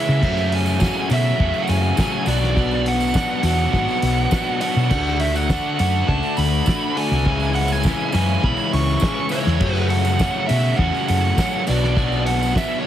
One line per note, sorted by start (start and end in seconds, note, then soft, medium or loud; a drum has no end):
0.00 0.20 C#3 medium
0.00 0.21 E3 medium
0.00 0.21 G#3 medium
0.00 0.21 C#4 medium
0.00 0.21 E4 loud
0.00 0.55 E5 medium
0.09 0.23 C#3 loud
0.22 0.78 F#2 medium
0.22 0.88 F#2 loud
0.22 0.79 C#3 medium
0.22 0.80 F#3 loud
0.22 0.80 A3 loud
0.22 0.80 C#4 loud
0.22 0.81 F#4 loud
0.22 kick loud
0.22 crash loud
0.37 tambourine soft
0.52 1.08 G#5 loud
0.52 open hi-hat medium
0.52 tambourine soft
0.66 tambourine medium
0.79 1.09 F#2 medium
0.79 1.09 C#3 medium
0.79 1.11 F#3 loud
0.79 1.10 A3 medium
0.79 1.11 C#4 loud
0.79 1.12 F#4 medium
0.79 kick loud
0.79 snare loud
0.79 tambourine loud
1.10 1.37 F#2 medium
1.10 1.32 B2 loud
1.10 1.38 C#3 medium
1.10 1.40 F#3 medium
1.10 1.39 A3 medium
1.10 1.39 C#4 medium
1.10 1.41 F#4 loud
1.10 1.65 E5 medium
1.10 open hi-hat medium
1.10 tambourine medium
1.39 1.51 E2 loud
1.39 1.96 F#2 loud
1.39 1.97 C#3 loud
1.39 1.98 F#3 loud
1.39 1.98 A3 loud
1.39 1.98 C#4 loud
1.39 1.99 F#4 loud
1.39 kick loud
1.54 tambourine soft
1.62 1.69 F#5 medium
1.67 1.91 F#2 loud
1.67 2.30 G#5 loud
1.67 open hi-hat medium
1.67 tambourine medium
1.82 tambourine soft
1.97 2.26 F#2 medium
1.97 2.26 C#3 medium
1.97 2.27 F#3 medium
1.97 2.26 A3 loud
1.97 2.27 C#4 medium
1.97 2.28 F#4 loud
1.97 kick loud
1.97 snare loud
1.97 tambourine loud
2.11 tambourine soft
2.26 3.15 B1 loud
2.26 2.55 B2 medium
2.26 2.56 F#3 loud
2.26 2.55 B3 loud
2.26 2.56 D4 loud
2.26 2.57 F#4 loud
2.26 2.88 D5 medium
2.26 open hi-hat medium
2.26 tambourine medium
2.44 snare soft
2.56 3.13 B2 loud
2.56 3.15 F#3 loud
2.56 3.14 B3 loud
2.56 3.15 D4 loud
2.56 3.16 F#4 loud
2.56 kick loud
2.56 tambourine soft
2.71 tambourine soft
2.86 3.41 F#5 medium
2.86 open hi-hat medium
2.86 tambourine soft
3.00 tambourine medium
3.14 3.43 B2 medium
3.14 3.44 F#3 medium
3.14 3.44 B3 medium
3.14 3.45 D4 loud
3.14 3.46 F#4 medium
3.14 kick loud
3.14 snare loud
3.14 tambourine loud
3.29 tambourine soft
3.43 3.66 E2 medium
3.43 3.72 B2 medium
3.43 3.72 F#3 medium
3.43 3.72 B3 medium
3.43 3.73 D4 loud
3.43 3.73 F#4 loud
3.43 4.60 F#5 loud
3.43 open hi-hat medium
3.43 tambourine medium
3.59 tambourine soft
3.73 3.85 G#1 loud
3.73 4.31 B2 loud
3.73 4.32 F#3 loud
3.73 4.32 B3 loud
3.73 4.32 D4 loud
3.73 4.33 F#4 loud
3.73 kick loud
3.73 tambourine soft
3.88 tambourine soft
4.02 4.25 B1 medium
4.02 open hi-hat medium
4.02 tambourine medium
4.18 tambourine soft
4.31 4.60 B2 medium
4.31 4.60 F#3 medium
4.31 4.61 B3 medium
4.31 4.61 D4 medium
4.31 4.62 F#4 loud
4.31 kick loud
4.31 snare loud
4.31 tambourine loud
4.46 tambourine soft
4.61 4.89 B2 medium
4.61 4.89 F#3 loud
4.61 4.90 B3 medium
4.61 4.90 D4 medium
4.61 4.90 F#4 loud
4.61 5.16 F#5 medium
4.61 open hi-hat medium
4.61 tambourine medium
4.76 4.92 B2 loud
4.76 tambourine soft
4.91 5.57 D2 loud
4.91 5.49 D3 medium
4.91 5.49 A3 loud
4.91 5.50 D4 medium
4.91 5.50 F#4 loud
4.91 kick loud
4.91 crash medium
5.07 tambourine soft
5.20 5.36 E5 medium
5.20 open hi-hat medium
5.20 tambourine soft
5.36 5.78 F#5 medium
5.36 tambourine medium
5.50 5.78 D3 medium
5.50 5.79 A3 medium
5.50 5.80 D4 medium
5.50 5.79 F#4 medium
5.50 kick loud
5.50 snare loud
5.50 tambourine medium
5.79 6.02 F#2 loud
5.79 6.07 D3 medium
5.79 6.07 A3 medium
5.79 6.08 D4 medium
5.79 6.08 F#4 medium
5.79 6.10 F#5 loud
5.79 open hi-hat medium
5.79 tambourine medium
6.08 6.20 C#2 loud
6.08 6.66 D3 medium
6.08 6.66 A3 loud
6.08 6.66 D4 loud
6.08 6.67 F#4 loud
6.08 6.36 A5 medium
6.08 kick loud
6.23 tambourine soft
6.37 6.60 D2 loud
6.37 6.98 B5 loud
6.37 open hi-hat medium
6.37 tambourine medium
6.52 tambourine soft
6.66 6.95 D3 medium
6.66 6.96 A3 medium
6.66 6.96 D4 medium
6.66 6.97 F#4 medium
6.66 kick loud
6.66 snare loud
6.66 tambourine loud
6.81 tambourine soft
6.96 7.24 D3 medium
6.96 7.25 A3 medium
6.96 7.24 D4 medium
6.96 7.25 F#4 medium
6.96 7.54 G#5 loud
6.96 open hi-hat medium
7.11 7.26 C2 loud
7.25 7.92 C#2 medium
7.25 7.83 C#3 medium
7.25 7.85 E3 loud
7.25 7.84 G#3 loud
7.25 7.86 C#4 loud
7.25 7.86 E4 loud
7.25 kick loud
7.40 tambourine soft
7.53 7.72 F#5 medium
7.53 open hi-hat medium
7.53 tambourine soft
7.68 8.13 G#5 loud
7.68 tambourine medium
7.83 8.12 C#3 medium
7.83 8.12 E3 medium
7.83 8.13 G#3 loud
7.83 8.13 C#4 medium
7.83 8.14 E4 loud
7.83 kick loud
7.83 snare loud
7.83 tambourine loud
8.12 8.36 F#2 loud
8.12 8.42 C#3 medium
8.12 8.42 E3 medium
8.12 8.43 G#3 medium
8.12 8.43 C#4 medium
8.12 8.44 E4 loud
8.12 8.44 G#5 loud
8.12 open hi-hat medium
8.12 tambourine medium
8.43 8.54 B1 loud
8.43 9.00 C#3 loud
8.43 9.01 E3 loud
8.43 9.01 G#3 loud
8.43 9.02 C#4 loud
8.43 9.03 E4 loud
8.43 8.73 B5 loud
8.43 kick loud
8.57 tambourine soft
8.73 8.95 C#2 loud
8.73 9.33 C#6 loud
8.73 open hi-hat medium
8.86 tambourine soft
9.00 9.29 C#3 medium
9.00 9.30 E3 medium
9.00 9.31 G#3 loud
9.00 9.31 C#4 loud
9.00 kick loud
9.00 snare loud
9.00 tambourine loud
9.04 9.31 E4 medium
9.15 tambourine soft
9.29 9.59 C#3 medium
9.29 9.59 E3 medium
9.29 9.59 G#3 loud
9.29 9.60 C#4 medium
9.29 9.60 E4 medium
9.29 9.73 C#5 medium
9.29 open hi-hat medium
9.29 tambourine medium
9.47 9.61 E2 loud
9.47 snare soft
9.61 10.18 F#2 medium
9.61 10.27 F#2 loud
9.61 10.19 C#3 loud
9.61 10.19 F#3 medium
9.61 10.19 A3 loud
9.61 10.19 C#4 loud
9.61 10.21 F#4 loud
9.61 kick loud
9.61 crash medium
9.73 9.86 B4 medium
9.73 tambourine soft
9.88 10.50 F#5 loud
9.88 open hi-hat medium
9.88 tambourine soft
10.05 tambourine medium
10.19 10.47 F#2 medium
10.19 10.48 C#3 medium
10.19 10.49 F#3 loud
10.19 10.48 A3 medium
10.19 10.48 C#4 medium
10.19 10.50 F#4 loud
10.19 kick loud
10.19 snare loud
10.19 tambourine loud
10.47 10.77 F#2 loud
10.47 10.72 B2 loud
10.47 10.78 C#3 medium
10.47 10.79 F#3 medium
10.47 10.78 A3 medium
10.47 10.78 C#4 loud
10.47 10.78 E5 medium
10.47 open hi-hat medium
10.47 tambourine medium
10.51 10.79 F#4 loud
10.76 10.89 E2 loud
10.76 11.36 F#2 loud
10.76 11.37 C#3 loud
10.76 11.39 F#3 loud
10.76 11.38 A3 loud
10.76 11.38 C#4 loud
10.76 11.39 F#4 loud
10.76 11.04 F#5 medium
10.76 kick loud
10.94 tambourine soft
11.08 11.31 F#2 loud
11.08 11.63 F#5 loud
11.08 open hi-hat medium
11.08 tambourine medium
11.24 tambourine soft
11.38 11.65 F#2 medium
11.38 11.65 C#3 medium
11.38 11.67 F#3 loud
11.38 11.66 A3 medium
11.38 11.66 C#4 medium
11.38 11.68 F#4 medium
11.38 kick loud
11.38 snare loud
11.38 tambourine loud
11.53 tambourine soft
11.67 12.57 B1 loud
11.67 11.95 B2 medium
11.67 11.95 F#3 loud
11.67 11.96 B3 loud
11.67 11.96 D4 loud
11.67 11.97 F#4 loud
11.67 12.22 D5 loud
11.67 open hi-hat medium
11.67 tambourine medium
11.84 snare soft
11.96 12.53 B2 loud
11.96 12.54 F#3 loud
11.96 12.55 B3 loud
11.96 12.55 D4 loud
11.96 12.55 F#4 loud
11.96 kick loud
11.96 tambourine soft
12.12 tambourine soft
12.26 12.53 F#5 loud
12.26 open hi-hat medium
12.26 tambourine soft
12.43 tambourine medium
12.54 12.83 B2 medium
12.54 12.84 F#3 medium
12.54 12.85 B3 medium
12.54 12.85 D4 medium
12.54 12.85 F#4 loud
12.54 12.79 E5 medium
12.54 kick loud
12.54 snare loud
12.54 tambourine medium
12.72 tambourine soft
12.80 12.86 C#5 medium